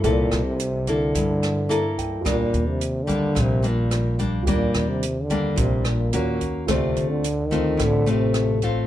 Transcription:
<<
  \new Staff \with { instrumentName = "Grand piano" } { \time 4/4 \key ees \lydian \tempo 4 = 108 << { r2. bes''8 g''8 | r1 | r1 | r1 | } \\ { <e' a' d''>1 | <f' g' bes' d''>1 | <f' g' bes' d''>2 <f' g' bes' d''>4 <ges' bes' des''>4 | <f' a' c'' d''>1 | } >> }
  \new Staff \with { instrumentName = "Nylon-string guitar" } { \time 4/4 \key ees \lydian << { <bes e' a'>4 r8 <bes e' a'>4. <bes e' a'>4 | <g bes d'>4 r8 <g bes d'>4 <g bes d'>4 <g bes d'>8 | <g bes d'>4 r8 <g bes d'>4. <bes des' ges'>4 | <a c' f'>4 r8 <a c' f'>4 <a c' f'>4 <a c' f'>8 | } \\ { c2 g,2 | r2 bes,2 | r2 bes,4 r4 | r2 a,2 | } >> }
  \new Staff \with { instrumentName = "Trombone" } { \clef bass \time 4/4 \key ees \lydian \tuplet 3/2 { bes,4 c8~ } c8 d2 r8 | \tuplet 3/2 { bes,4 c8~ c8 d4 } c8 bes,4 r8 | \tuplet 3/2 { bes,4 c8~ c8 d4 } c8 bes,4 r8 | \tuplet 3/2 { c4 d8~ d8 ees4 } d8 c4 r8 | }
  \new Staff \with { instrumentName = "Upright bass" } { \clef bass \time 4/4 \key ees \lydian c,8 c,4. g,2 | ees,8 ees,4. bes,,2 | ees,8 ees,4. bes,,4 ees,4 | d,8 d,4. a,,2 | }
  \new DrumStaff \with { instrumentName = "Drums" } \drummode { \time 4/4 <hh bd>8 <hh ss>8 hh8 <hh bd>8 <hh bd>8 <hh ss>8 hh8 <hh bd>8 | <hh bd ss>8 hh8 hh8 <hh bd>8 <hh bd ss>8 hh8 <hh ss>8 <hh bd>8 | <hh bd>8 <hh ss>8 hh8 <hh bd>8 <hh bd>8 <hh ss>8 hh8 <hh bd>8 | <hh bd ss>8 hh8 hh8 <hh bd>8 <hh bd ss>8 hh8 <hh ss>8 <hh bd>8 | }
>>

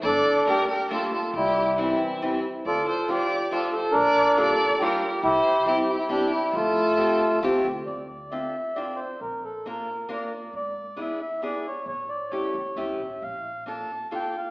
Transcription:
<<
  \new Staff \with { instrumentName = "Accordion" } { \time 3/4 \key f \major \tempo 4 = 136 << { a'4 g'8 g'8 f'8 f'8 | e'4 c'4. r8 | a'8 a'8 g'4 f'8 a'8 | bes'4 a'4 g'4 |
g'4 e'8 e'32 e'32 e'16 d'8 e'8 | f'2 r4 | \key d \minor d''8 d''8 e''4 d''8 c''8 | bes'8 a'8 bes'4 d''4 |
d''4 e''8 e''8 d''8 cis''8 | cis''8 d''8 cis''4 e''4 | f''4 a''4 g''8 f''8 | } \\ { d'4. r4. | g4 e4. r8 | f'4. r4. | d'4. r4. |
e'4. r4. | a2 r4 | r2. | r2. |
r2. | r2. | r2. | } >> }
  \new Staff \with { instrumentName = "Violin" } { \time 3/4 \key f \major d''4 bes'8 bes'8 a'8 a'8 | g'4 e'4. r8 | d''8 c''8 d''4 a'8 c''8 | d''4 d''4 bes'4 |
c''4 g'8 g'32 g'32 g'16 g'8 g'8 | a'2 r4 | \key d \minor r2. | r2. |
r2. | r2. | r2. | }
  \new Staff \with { instrumentName = "Steel-string acoustic guitar" } { \time 3/4 \key f \major r4 <g a bes d'>8 r8 <g a bes d'>8 r8 | r4 <e g c' e'>8 r8 <e g c' e'>8 r8 | r4 <f a d' f'>8 r8 <f a d' f'>8 r8 | r4 <g bes d' f'>8 r8 <g bes d' f'>8 r8 |
r4 <g c' e' g'>8 r8 <g c' e' g'>8 r8 | r4 <a c' f' g'>8 r8 <a c' f' g'>8 r8 | \key d \minor r4 <c' d' f' a'>8 r8 <c' d' f' a'>8 r8 | r4 <bes d' f' bes'>8 r8 <bes d' f' bes'>8 r8 |
r4 <b d' e' gis'>8 r8 <b d' e' gis'>8 r8 | r4 <a cis' e' g'>8 r8 <a cis' e' g'>8 r8 | r4 <bes d' f' a'>8 r8 <bes d' f' a'>8 r8 | }
  \new Staff \with { instrumentName = "Upright bass" } { \clef bass \time 3/4 \key f \major g,,8 r2 r8 | c,2 r4 | d,8 r2 r8 | bes,,2 r4 |
c,8 r2 r8 | f,2 c,8 d,8 | \key d \minor d,2 r4 | bes,,2 r4 |
gis,,2 r4 | a,,4. e,8 cis,8 a,,8 | bes,,2 r4 | }
>>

